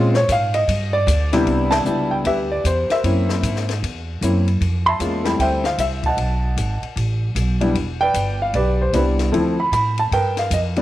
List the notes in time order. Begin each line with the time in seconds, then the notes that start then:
Already playing: A#2 G#3 C4 C#4 F4
0.12 C5, snare
0.16 C#5
0.28 G#2 F5, kick, hi-hat pedal, ride
0.54 D#5, ride
0.68 G2, kick, ride
0.93 D5
1.07 D2, kick, hi-hat pedal, ride
1.33 C3 G3 B3 D4 E4, snare, ride
1.46 C2, kick, ride
1.71 E5 A5, snare, ride
1.85 C#2 G3 B3 D4 E4, hi-hat pedal
2.11 G5
2.24 D2 G4 B4 E5, kick, ride
2.52 D5
2.64 E2 C5, kick, hi-hat pedal, ride
2.90 A#4 C5 E5, snare, ride
3.03 F#2 A#3 C4 C#4 E4, kick, ride
3.29 snare
3.42 G#2, kick, hi-hat pedal, ride
3.56 snare
3.69 snare, ride
3.82 E2, kick, ride
4.21 F#2 A#3 C4 C#4 E4, kick, hi-hat pedal, ride
4.48 ride
4.61 F2, kick, ride
4.86 E5 A5 C6
4.99 E2 G#3 A#3 C#4 F4, kick, hi-hat pedal, ride
5.24 G3 A3 C4 E4 B5, snare, ride
5.39 D2 C5 E5 G5, kick, ride
5.64 F5, snare
5.78 C2 E5, kick, hi-hat pedal, ride
6.03 F#5 A5, kick, ride
6.08 D#5
6.17 B1, kick, ride
6.56 G#1, kick, hi-hat pedal, ride
6.82 muted upright bass stroke, ride
6.96 A1, kick, ride
7.35 B1, kick, hi-hat pedal, ride
7.61 G3 B3 D4 E4, ride
7.74 E1, kick, ride
8.01 B4 D5 G5
8.14 G1, kick, hi-hat pedal, ride
8.42 F5
8.53 B1 G4 B4 D5, kick, ride
8.82 C5
8.93 C2 G3 B3 D4 E4 B4, kick, hi-hat pedal, ride
9.19 snare, ride
9.32 D2 F3 A3 C4 E4, kick, ride
9.60 B5
9.72 A2 B5, kick, hi-hat pedal, ride
9.98 A5, ride
10.11 G2 A#4 B4 G5, kick, ride
10.37 F5, snare, ride
10.51 F2 D#5, kick, hi-hat pedal, ride
10.76 E3 G3 B3 D4, ride